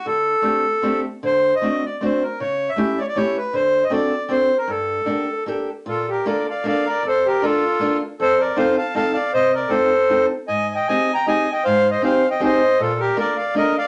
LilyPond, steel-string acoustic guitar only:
\new Staff \with { instrumentName = "Steel-string acoustic guitar" } { \time 3/4 \key g \minor \tempo 4 = 156 d4 <a c' d' g'>8 r8 <a c' d' g'>8 r8 | d4 <a c' d' fis'>8 r8 <a c' d' fis'>8 r8 | cis4 <a cis' e' g'>8 r8 <a cis' e' g'>8 r8 | d4 <c' d' fis' a'>8 r8 <c' d' fis' a'>8 r8 |
g,4 <bes d' g' a'>8 r8 <bes d' g' a'>8 r8 | \key bes \major bes,4 <bes d' f' a'>8 r8 <bes d' f' a'>8 r8 | f,4 <bes d' f' a'>8 r8 <bes d' f' a'>8 r8 | f,4 <c' ees' f' a'>8 r8 <c' ees' f' a'>8 r8 |
c4 <c' ees' f' a'>8 r8 <c' ees' f' a'>8 r8 | aes,4 <c' ees' g' aes'>8 r8 <c' ees' g' aes'>8 r8 | aes,4 <c' ees' g' aes'>8 r8 <c' ees' g' aes'>8 r8 | bes,4 <bes d' f' a'>8 r8 <bes d' f' a'>8 r8 | }